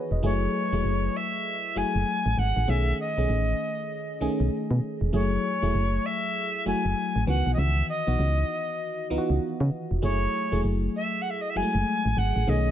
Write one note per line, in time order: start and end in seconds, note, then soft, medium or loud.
0.00 0.24 E3 medium
0.00 0.24 B3 medium
0.00 0.25 D#4 medium
0.00 0.25 F#4 medium
0.00 0.11 G#4 medium
0.00 0.11 B4 medium
0.00 0.25 C#5 medium
0.11 0.21 E1 medium
0.11 0.41 B4 medium
0.11 0.41 D#5 medium
0.23 0.48 F#1 loud
0.23 0.66 F#3 medium
0.23 0.66 A3 medium
0.23 0.66 E4 medium
0.23 0.66 G#4 medium
0.23 1.17 C#5 loud
0.72 0.82 E1 medium
0.72 1.66 F#3 medium
0.72 1.66 A3 medium
0.72 1.66 E4 medium
0.72 1.67 G#4 medium
0.84 1.09 F#1 medium
1.16 1.78 E5 loud
1.76 1.84 F#1 soft
1.76 2.59 F#3 medium
1.76 2.59 A3 medium
1.76 2.60 E4 medium
1.76 2.60 G#4 medium
1.76 2.40 G#5 loud
1.95 2.05 F#1 medium
2.26 2.35 A1 loud
2.38 2.53 G#1 loud
2.38 2.70 F#5 loud
2.57 2.66 A1 loud
2.67 2.93 B1 loud
2.67 3.10 D#3 medium
2.67 3.11 A3 medium
2.67 3.11 C#4 medium
2.67 3.11 G#4 medium
2.67 2.99 E5 loud
3.00 4.18 D#5 loud
3.17 3.27 B1 medium
3.17 4.11 D#3 medium
3.17 4.11 A3 medium
3.17 4.11 C#4 medium
3.17 4.12 G#4 medium
3.29 3.54 A1 loud
4.21 4.29 B1 soft
4.21 5.04 D#3 medium
4.21 5.05 A3 medium
4.21 5.05 C#4 medium
4.21 5.05 G#4 medium
4.40 4.50 B1 medium
4.71 4.80 B2 medium
5.01 5.11 E1 medium
5.13 5.38 F#1 medium
5.13 5.55 F#3 medium
5.13 5.56 A3 medium
5.13 5.56 E4 medium
5.13 5.56 G#4 medium
5.13 6.07 C#5 loud
5.62 5.72 E1 medium
5.62 6.56 F#3 medium
5.62 6.56 A3 medium
5.62 6.56 E4 medium
5.62 6.57 G#4 medium
5.74 5.99 F#1 medium
6.05 6.66 E5 medium
6.66 6.74 F#1 soft
6.66 7.27 F#3 medium
6.66 7.27 A3 medium
6.66 7.27 E4 medium
6.66 7.27 F#4 medium
6.66 7.23 G#5 loud
6.85 6.94 F#1 medium
7.16 7.25 A1 medium
7.27 7.43 C#2 loud
7.27 7.96 D#3 medium
7.27 7.96 E3 medium
7.27 7.96 B3 medium
7.27 7.96 F#4 medium
7.27 7.51 F#5 medium
7.46 7.56 B1 medium
7.53 7.60 D#5 medium
7.58 7.83 C#2 loud
7.58 7.88 E5 loud
7.89 9.07 D#5 medium
8.07 8.17 B1 medium
8.07 9.01 E3 medium
8.07 9.01 B3 medium
8.07 9.01 D#4 medium
8.07 9.01 F#4 medium
8.19 8.44 C#2 loud
9.10 9.19 C#2 soft
9.10 9.94 E3 medium
9.10 9.94 B3 medium
9.10 9.94 D#4 medium
9.10 9.19 F4 medium
9.18 9.98 F#4 loud
9.30 9.39 C#2 medium
9.60 9.70 C#3 loud
9.91 10.01 E1 medium
10.02 10.28 F#1 loud
10.02 10.45 F#3 medium
10.02 10.45 A3 medium
10.02 10.46 E4 medium
10.02 10.46 G#4 medium
10.02 10.60 C#5 loud
10.52 10.62 E1 medium
10.52 11.46 F#3 medium
10.52 11.46 A3 medium
10.52 11.46 E4 medium
10.52 11.46 G#4 medium
10.64 10.89 F#1 medium
10.95 11.23 E5 medium
11.21 11.31 F#5 medium
11.30 11.42 E5 medium
11.41 11.51 D#5 medium
11.49 11.58 E5 medium
11.55 11.63 F#1 soft
11.55 12.39 F#3 medium
11.55 11.64 G#3 medium
11.55 12.39 E4 medium
11.55 12.40 G#4 medium
11.55 12.19 G#5 loud
11.62 12.42 A3 medium
11.75 11.84 F#1 medium
12.05 12.15 A1 medium
12.17 12.32 G#1 loud
12.17 12.50 F#5 medium
12.36 12.45 A1 medium
12.47 12.71 B1 loud
12.47 12.71 D#3 medium
12.47 12.71 A3 medium
12.47 12.71 C#4 medium
12.47 12.71 G#4 medium
12.47 12.71 D#5 medium